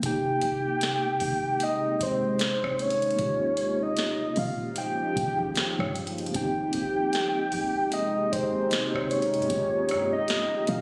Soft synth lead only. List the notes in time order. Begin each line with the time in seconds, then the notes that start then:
0.06 G5
1.63 D#5
2.03 C5
2.82 C#5
3.83 D#5
4.38 F5
4.78 G5
6.36 G5
7.93 D#5
8.32 C5
9.11 C#5
10.13 D#5
10.69 F5